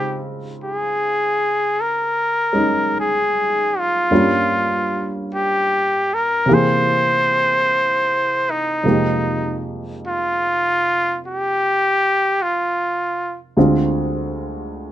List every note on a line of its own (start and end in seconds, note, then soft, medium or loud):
0.00 4.10 C#3 soft
0.00 2.51 G#3 soft
0.00 4.11 C4 soft
0.00 2.54 D#4 soft
0.00 4.12 F4 soft
0.00 0.23 G4 medium
0.64 1.83 G#4 medium
1.81 2.96 A#4 medium
2.53 4.10 G#3 soft
2.53 4.10 C#4 soft
2.53 4.11 D#4 soft
3.00 3.80 G#4 medium
3.79 5.14 F4 medium
4.11 6.47 G2 soft
4.11 6.47 G3 soft
4.11 6.47 A#3 soft
4.11 6.48 C#4 soft
4.11 6.48 F4 soft
5.34 6.15 G4 medium
6.14 6.55 A#4 medium
6.46 8.83 C3 soft
6.46 8.85 A#3 soft
6.46 8.84 G4 soft
6.50 8.85 E3 soft
6.50 8.86 G#4 medium
6.50 8.52 C5 medium
8.50 9.66 D#4 medium
8.83 13.56 F2 soft
8.83 13.56 C3 soft
8.83 13.56 G#3 soft
8.83 13.57 A#3 soft
8.83 13.58 D#4 soft
8.88 13.58 G4 soft
10.07 11.19 F4 medium
11.27 12.44 G4 medium
12.42 13.38 F4 medium
13.57 14.92 D2 soft
13.57 14.92 D3 soft
13.57 14.92 G#3 soft
13.57 14.92 C4 soft
13.57 14.92 F4 soft